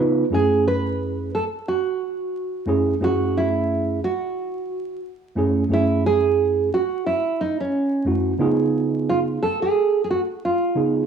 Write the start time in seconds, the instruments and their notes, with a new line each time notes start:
Already playing: tine electric piano C#3 B3 D#4
0.00 tine electric piano F4 B4
0.30 tine electric piano F#2 A3 C#4 E4 G#4
0.34 nylon-string guitar G#4
0.68 nylon-string guitar B4
1.35 nylon-string guitar A4
1.68 nylon-string guitar F#4
2.66 tine electric piano F#2 A3 C#4 E4 G#4
3.00 tine electric piano F#2 A3 C#4 E4 G#4, nylon-string guitar F#4
3.37 nylon-string guitar E4
4.04 nylon-string guitar F#4
5.35 tine electric piano F#2 A3 C#4 E4 G#4
5.69 tine electric piano F#2 A3 C#4 E4 G#4
5.73 nylon-string guitar E4
6.06 nylon-string guitar G#4
6.74 nylon-string guitar F#4
7.07 nylon-string guitar E4
7.41 nylon-string guitar D#4
7.61 nylon-string guitar C#4
8.05 tine electric piano F#2 A3 C#4 E4 F#4
8.39 tine electric piano C#3 B3 D#4 F4 G#4
9.10 nylon-string guitar F4
9.43 nylon-string guitar A4
9.62 nylon-string guitar G#4
10.04 nylon-string guitar G#4
10.10 nylon-string guitar F#4
10.45 nylon-string guitar F4
10.75 tine electric piano C#3 B3 D#4 F4 G#4